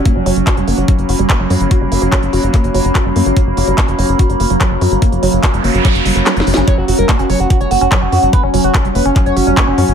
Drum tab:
HH |x-----o--x--x--x--o--x--x--x--o--x--x-----o--x--|x-----o--x--x--x--o--x--x--x--o--x--x-----o--x--|x-----o--x--x--x--o--x--x--x--o--x--x-----o--x--|x--x--o--x--x--x--o--x--x--x--o--x--x--x--o--x--|
CP |------------x-----------------------x-----------|------------x-----------x-----------x-----------|------------x-----------------------x-----------|------------x-----------x-----------x-----------|
SD |------------------------------------------------|------------------------------------------------|------------------------------------------------|------------------------------------o---o---o---|
BD |o-----------o-----------o-----------o-----------|o-----------o-----------o-----------o-----------|o-----------o-----------o-----------o-----------|o-----------o-----------o-----------------------|

HH |x-----o--x--x--x--o--x--x--x--o--x--x-----o--x--|x-----o--x--x--x--o--x--x--x--o--x--x-----o--x--|
CP |------------x-----------------------x-----------|------------x-----------x-----------x-----------|
SD |------------------------------------------------|------------------------------------------------|
BD |o-----------o-----------o-----------o-----------|o-----------o-----------o-----------o-----------|